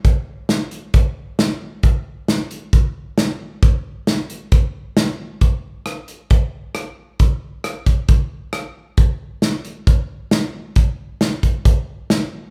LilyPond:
\new DrumStaff \with { instrumentName = "Drums" } \drummode { \time 4/4 \tempo 4 = 134 <hh bd>4 <hh sn>8 hh8 <hh bd>4 <hh sn>4 | <hh bd>4 <hh sn>8 hh8 <hh bd>4 <hh sn>4 | <hh bd>4 <hh sn>8 hh8 <hh bd>4 <hh sn>4 | <hh bd>4 <hh ss>8 hh8 <hh bd>4 <hh ss>4 |
<hh bd>4 <hh ss>8 <hh bd>8 <hh bd>4 <hh ss>4 | <hh bd>4 <hh sn>8 hh8 <hh bd>4 <hh sn>4 | <hh bd>4 <hh sn>8 <hh bd>8 <hh bd>4 <hh sn>4 | }